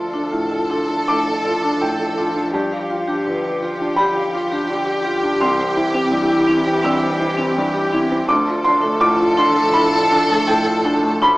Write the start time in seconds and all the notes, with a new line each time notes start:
Already playing: D2 F3 F4 A4 A5
0.14 D4
0.32 A2 F4
0.51 F4 A4
0.70 D4 F4
0.89 D4 A4
1.08 A2 D4 D6
1.26 A4 D5
1.45 F4 D5
1.63 D4
1.82 A2 G5
1.99 A4
2.18 D4 F4
2.36 D4
2.54 G2 G4 A5
2.72 G4 F5
2.90 F4 F5
3.07 D4 G4
3.26 D3 B4
3.44 G4 B4
3.62 F4 G4
3.80 D4 D5
3.96 D3 G4 B5
4.16 G4 F5
4.33 F4 F5
4.51 D4 G4
4.70 D3
4.87 G4 D5
5.04 F4 G4
5.23 D4
5.40 C2 E3 C4 C6
5.58 G4 C5
5.75 E4 C5
5.94 C4
6.12 G2 E4
6.30 E4 G4
6.47 C4 E4
6.66 C4 G4
6.83 G2 C4 E6
7.01 G4 C5
7.20 E4 C5
7.37 C4
7.57 G2
7.74 G4
7.92 C4 E4
8.11 C4
8.28 D2 F3 D4 A4 D6
8.46 F4 D5
8.64 D4 D5 C6
8.82 A3 D4
9.00 A2 F4 D6
9.19 F4
9.37 D4 C6
9.55 A3 A4
9.73 A2 D4 B5
9.92 F4 D5
10.10 D4 D5 A5
10.29 A3 D4
10.47 A2 G5
10.65 F4 A4
10.84 D4 A5
11.03 A3
11.21 D2 F3 D4 A4 B5